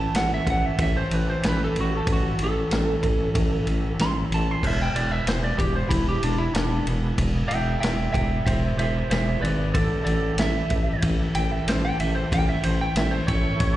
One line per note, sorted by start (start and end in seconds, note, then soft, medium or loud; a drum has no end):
0.00 2.04 C#4 medium
0.00 2.04 E4 medium
0.00 2.05 G4 medium
0.00 2.05 A4 medium
0.00 0.14 A5 loud
0.15 0.40 A1 medium
0.15 0.31 F#5 medium
0.15 snare loud
0.15 ride medium
0.34 0.48 E5 medium
0.47 0.72 A1 medium
0.47 0.66 F#5 loud
0.47 kick medium
0.47 ride medium
0.66 0.80 E5 medium
0.78 1.04 A1 loud
0.78 0.96 E5 medium
0.78 kick loud
0.78 ride loud
0.97 1.14 C5 loud
1.10 1.36 A1 medium
1.10 1.28 B4 medium
1.10 ride medium
1.30 1.44 C5 medium
1.43 1.69 A1 loud
1.43 snare loud
1.43 ride loud
1.48 1.61 B4 medium
1.64 1.77 A4 medium
1.76 2.01 A1 medium
1.76 ride medium
1.81 1.93 F#4 medium
1.97 2.09 A4 medium
2.07 2.32 A1 loud
2.07 4.61 G3 medium
2.07 4.61 C#4 medium
2.07 4.61 E4 medium
2.07 4.61 A4 medium
2.07 kick loud
2.07 ride loud
2.13 2.41 F#4 loud
2.39 2.65 A1 medium
2.39 ride medium
2.44 3.65 A4 loud
2.71 2.96 A1 loud
2.71 snare loud
2.71 ride medium
3.03 3.28 A1 medium
3.03 kick medium
3.03 ride medium
3.35 3.60 A1 medium
3.35 kick loud
3.35 ride medium
3.67 3.92 A1 medium
3.67 ride medium
3.98 4.24 A1 medium
3.98 4.16 C6 loud
3.98 snare loud
3.98 ride medium
4.31 4.56 A1 medium
4.31 4.51 A5 medium
4.31 ride medium
4.51 4.64 C6 medium
4.63 4.88 E1 loud
4.63 7.16 D4 medium
4.63 7.16 E4 medium
4.63 7.16 G#4 medium
4.63 7.16 B4 medium
4.63 kick loud
4.63 crash loud
4.67 4.80 E5 loud
4.82 4.96 G5 medium
4.94 5.20 E1 medium
4.94 5.12 D5 loud
4.94 ride medium
5.12 5.27 E5 medium
5.26 5.52 E1 medium
5.26 5.43 C5 medium
5.26 snare loud
5.26 ride loud
5.44 5.59 D5 medium
5.58 5.84 E1 medium
5.58 5.74 G4 medium
5.58 kick medium
5.58 ride medium
5.76 5.91 C5 medium
5.89 6.16 E1 loud
5.89 6.05 E4 medium
5.89 kick loud
5.89 ride loud
6.08 6.23 G4 medium
6.22 6.48 E1 medium
6.22 6.38 D4 medium
6.22 ride medium
6.38 6.54 E4 medium
6.54 6.80 E1 loud
6.54 6.85 D4 loud
6.54 snare loud
6.54 ride loud
6.86 7.12 E1 medium
6.86 ride medium
7.18 7.44 E1 loud
7.18 9.73 E4 medium
7.18 9.73 G#4 medium
7.18 9.73 D5 medium
7.18 kick loud
7.18 ride loud
7.48 7.76 E1 medium
7.48 7.80 E5 medium
7.48 7.79 G5 medium
7.48 ride medium
7.80 8.07 E1 loud
7.80 8.12 E5 medium
7.80 8.12 G5 medium
7.80 snare loud
7.80 ride medium
8.13 8.40 E1 medium
8.13 8.43 E5 medium
8.13 8.45 G5 medium
8.13 kick medium
8.13 ride medium
8.46 8.72 E1 loud
8.46 8.76 C5 medium
8.46 8.77 E5 medium
8.46 kick loud
8.46 ride medium
8.76 9.03 E1 medium
8.76 9.08 C5 medium
8.76 9.10 E5 medium
8.76 ride medium
9.10 9.36 E1 loud
9.10 9.40 C5 medium
9.10 9.42 E5 loud
9.10 snare loud
9.10 ride medium
9.40 9.76 G#1 medium
9.40 9.72 B4 medium
9.40 9.72 D5 loud
9.45 ride medium
9.74 10.00 A1 medium
9.74 12.30 C#3 medium
9.74 10.03 A4 loud
9.74 10.04 D5 medium
9.74 kick loud
9.74 ride medium
9.78 12.30 E4 medium
9.78 12.30 G4 medium
9.78 12.30 A4 medium
10.04 10.31 A1 medium
10.04 10.35 A4 medium
10.04 10.37 D5 medium
10.04 ride medium
10.37 10.63 A1 loud
10.37 11.02 E5 medium
10.37 snare loud
10.37 ride loud
10.70 10.96 A1 medium
10.70 kick medium
10.70 ride medium
11.02 11.28 A1 medium
11.02 kick loud
11.02 ride loud
11.35 11.60 A1 medium
11.35 11.51 G5 loud
11.35 ride medium
11.51 11.67 E5 loud
11.68 11.93 A1 loud
11.68 11.83 C5 medium
11.68 snare loud
11.68 ride loud
11.85 11.99 G5 loud
12.00 12.25 A1 medium
12.00 12.15 E5 medium
12.00 ride medium
12.15 12.31 C5 medium
12.32 12.57 A1 loud
12.32 12.53 F4 medium
12.32 12.53 G#4 medium
12.32 12.53 A#4 medium
12.32 12.53 D5 medium
12.32 12.48 G5 loud
12.32 kick loud
12.32 ride loud
12.49 12.64 E5 loud
12.53 13.77 A3 medium
12.53 13.77 E4 medium
12.53 13.77 C#5 medium
12.53 13.77 G5 medium
12.63 12.89 A1 medium
12.63 12.79 C5 medium
12.63 ride medium
12.81 12.96 G5 loud
12.96 13.21 A1 loud
12.96 13.12 E5 medium
12.96 snare loud
12.96 ride loud
13.11 13.27 C5 loud
13.27 13.54 A1 medium
13.27 13.77 C#5 loud
13.27 kick medium
13.27 ride medium
13.60 13.77 A1 medium
13.60 kick loud
13.60 ride medium